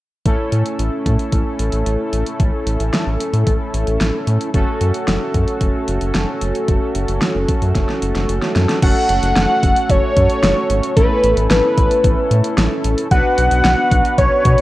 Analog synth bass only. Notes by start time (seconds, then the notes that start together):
0.25 A1
0.52 A2
0.79 A1
1.06 A2
1.33 A1
1.59 A1
1.73 A1
1.86 A1
2.13 A1
2.40 A1
2.66 A1
2.80 A1
3.07 A1
3.33 A2
3.47 A1
3.74 A1
3.87 A1
4.00 A1
4.27 A2
4.54 F#1
4.81 F#2
5.08 F#1
5.35 F#2
5.61 F#1
5.88 F#1
6.01 F#1
6.15 F#1
6.42 F#1
6.68 F#1
6.95 F#1
7.09 F#1
7.35 F#1
7.62 F#2
7.75 F#1
8.02 F#1
8.15 F#1
8.29 F#1
8.56 F#2
8.82 F#1
9.09 F#1
9.23 F#1
9.36 F#1
9.63 F#1
9.90 F#1
10.17 F#2
10.43 F#1
10.70 G#1
10.97 A1
11.23 A1
11.37 A1
11.50 A1
11.77 A1
12.04 A1
12.31 A2
12.57 A1
12.84 A1
13.11 B1
13.38 B1
13.51 B1
13.65 B1
13.92 B1
14.18 B1
14.45 B2